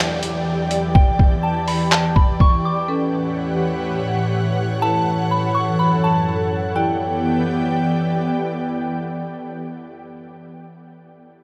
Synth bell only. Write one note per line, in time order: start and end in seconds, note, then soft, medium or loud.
0.95 1.40 G5 loud
1.43 1.66 A5 medium
1.68 1.91 B5 medium
1.92 2.15 A5 medium
2.16 2.39 B5 medium
2.41 2.64 C#6 medium
2.65 2.88 D6 medium
4.82 5.28 A5 loud
5.31 5.54 B5 medium
5.55 5.78 C#6 medium
5.79 6.02 B5 medium
6.04 6.26 A5 medium
6.76 8.17 G5 medium